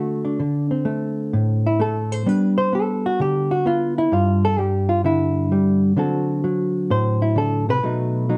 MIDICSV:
0, 0, Header, 1, 2, 480
1, 0, Start_track
1, 0, Tempo, 463679
1, 415, Time_signature, 4, 2, 24, 8
1, 8671, End_track
2, 0, Start_track
2, 0, Title_t, "Hollow-body jazz guitar"
2, 0, Program_c, 0, 26
2, 0, Note_on_c, 0, 50, 62
2, 0, Note_on_c, 0, 57, 63
2, 0, Note_on_c, 0, 62, 48
2, 0, Note_on_c, 0, 66, 46
2, 251, Note_off_c, 0, 62, 0
2, 255, Note_on_c, 0, 62, 46
2, 395, Note_off_c, 0, 57, 0
2, 397, Note_off_c, 0, 50, 0
2, 399, Note_off_c, 0, 66, 0
2, 409, Note_on_c, 0, 50, 61
2, 730, Note_off_c, 0, 62, 0
2, 734, Note_on_c, 0, 60, 45
2, 881, Note_on_c, 0, 57, 65
2, 1380, Note_on_c, 0, 45, 64
2, 1723, Note_on_c, 0, 64, 84
2, 1846, Note_off_c, 0, 57, 0
2, 1859, Note_on_c, 0, 57, 67
2, 1864, Note_off_c, 0, 64, 0
2, 1878, Note_on_c, 0, 69, 86
2, 2195, Note_off_c, 0, 69, 0
2, 2195, Note_on_c, 0, 72, 99
2, 2310, Note_off_c, 0, 60, 0
2, 2312, Note_off_c, 0, 50, 0
2, 2318, Note_off_c, 0, 45, 0
2, 2318, Note_off_c, 0, 57, 0
2, 2343, Note_on_c, 0, 55, 57
2, 2349, Note_on_c, 0, 59, 43
2, 2351, Note_on_c, 0, 62, 39
2, 2367, Note_off_c, 0, 72, 0
2, 2367, Note_on_c, 0, 71, 77
2, 2664, Note_off_c, 0, 71, 0
2, 2668, Note_on_c, 0, 72, 105
2, 2816, Note_off_c, 0, 72, 0
2, 2817, Note_off_c, 0, 59, 0
2, 2821, Note_on_c, 0, 59, 59
2, 2846, Note_on_c, 0, 69, 74
2, 3157, Note_off_c, 0, 69, 0
2, 3167, Note_on_c, 0, 66, 81
2, 3306, Note_off_c, 0, 66, 0
2, 3310, Note_on_c, 0, 50, 61
2, 3328, Note_on_c, 0, 67, 93
2, 3636, Note_on_c, 0, 66, 78
2, 3638, Note_off_c, 0, 67, 0
2, 3772, Note_off_c, 0, 59, 0
2, 3780, Note_off_c, 0, 66, 0
2, 3785, Note_on_c, 0, 59, 68
2, 3793, Note_off_c, 0, 62, 0
2, 3798, Note_on_c, 0, 65, 86
2, 4113, Note_off_c, 0, 65, 0
2, 4122, Note_on_c, 0, 64, 90
2, 4240, Note_off_c, 0, 55, 0
2, 4241, Note_off_c, 0, 59, 0
2, 4243, Note_off_c, 0, 50, 0
2, 4264, Note_off_c, 0, 64, 0
2, 4265, Note_on_c, 0, 43, 66
2, 4275, Note_on_c, 0, 65, 75
2, 4592, Note_off_c, 0, 65, 0
2, 4604, Note_on_c, 0, 69, 102
2, 4742, Note_on_c, 0, 55, 58
2, 4753, Note_off_c, 0, 69, 0
2, 4753, Note_on_c, 0, 67, 83
2, 5062, Note_on_c, 0, 65, 77
2, 5072, Note_off_c, 0, 67, 0
2, 5214, Note_off_c, 0, 65, 0
2, 5221, Note_on_c, 0, 50, 60
2, 5234, Note_on_c, 0, 64, 80
2, 5698, Note_off_c, 0, 55, 0
2, 5712, Note_on_c, 0, 55, 66
2, 6033, Note_off_c, 0, 64, 0
2, 6160, Note_off_c, 0, 50, 0
2, 6163, Note_off_c, 0, 43, 0
2, 6166, Note_off_c, 0, 55, 0
2, 6176, Note_on_c, 0, 50, 64
2, 6184, Note_on_c, 0, 54, 43
2, 6189, Note_on_c, 0, 60, 47
2, 6195, Note_on_c, 0, 66, 43
2, 6203, Note_on_c, 0, 69, 46
2, 6662, Note_off_c, 0, 54, 0
2, 6666, Note_on_c, 0, 54, 59
2, 7147, Note_on_c, 0, 45, 64
2, 7152, Note_off_c, 0, 69, 0
2, 7156, Note_on_c, 0, 72, 91
2, 7470, Note_off_c, 0, 66, 0
2, 7474, Note_on_c, 0, 64, 73
2, 7475, Note_off_c, 0, 72, 0
2, 7604, Note_off_c, 0, 50, 0
2, 7617, Note_on_c, 0, 50, 61
2, 7621, Note_off_c, 0, 64, 0
2, 7639, Note_on_c, 0, 69, 88
2, 7945, Note_off_c, 0, 50, 0
2, 7956, Note_off_c, 0, 69, 0
2, 7960, Note_on_c, 0, 48, 61
2, 7973, Note_on_c, 0, 71, 102
2, 8085, Note_off_c, 0, 45, 0
2, 8085, Note_off_c, 0, 54, 0
2, 8086, Note_off_c, 0, 60, 0
2, 8103, Note_off_c, 0, 48, 0
2, 8107, Note_on_c, 0, 47, 61
2, 8110, Note_on_c, 0, 54, 46
2, 8112, Note_on_c, 0, 57, 47
2, 8127, Note_on_c, 0, 63, 45
2, 8572, Note_off_c, 0, 54, 0
2, 8577, Note_off_c, 0, 63, 0
2, 8585, Note_on_c, 0, 54, 62
2, 8589, Note_on_c, 0, 63, 48
2, 8592, Note_off_c, 0, 71, 0
2, 8671, Note_off_c, 0, 47, 0
2, 8671, Note_off_c, 0, 54, 0
2, 8671, Note_off_c, 0, 57, 0
2, 8671, Note_off_c, 0, 63, 0
2, 8671, End_track
0, 0, End_of_file